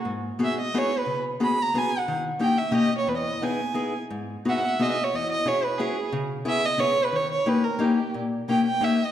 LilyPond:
<<
  \new Staff \with { instrumentName = "Violin" } { \time 3/4 \key gis \minor \tempo 4 = 178 r4 e''8 dis''8 \tuplet 3/2 { cis''4 b'8~ } | b'32 r8. r32 b''8 ais''8 \tuplet 3/2 { gis''4 fis''8~ } | fis''32 r8. r32 g''8 e''8 \tuplet 3/2 { dis''4 cis''8 } | b'16 dis''8. gis''4. r8 |
r4 fis''32 e''32 fis''16 e''8 \tuplet 3/2 { dis''16 e''16 dis''8 cis''8 } | dis''8 dis''8 cis''8 b'8 gis'4 | r4 e''8 dis''8 \tuplet 3/2 { cis''4 b'8 } | cis''8 cis''8 b'8 ais'8 g'4 |
r4 g''8 g''8 \tuplet 3/2 { e''4 dis''8 } | }
  \new Staff \with { instrumentName = "Steel-string acoustic guitar" } { \time 3/4 \key gis \minor gis,4 <b dis' fis' gis'>8 r8 <b dis' fis' gis'>8 r8 | cis4 <b cis' fis' gis'>8 r8 <b cis' fis' gis'>8 r8 | dis4 <ais cis' dis' g'>8 r8 <ais cis' dis' g'>8 r8 | e,4 <b dis' e' gis'>8 r8 <b dis' e' gis'>8 r8 |
gis,4 <b dis' fis' gis'>8 r8 <b dis' fis' gis'>8 r8 | e,4 <cis' e' fis' gis'>8 r8 <cis' e' fis' gis'>8 r8 | cis4 <b cis' e' gis'>8 r8 <b cis' e' gis'>8 r8 | dis4 <ais cis' dis' g'>8 r8 <ais cis' dis' g'>8 r8 |
ais,4 <ais cis' dis' g'>8 r8 <ais cis' dis' g'>8 r8 | }
>>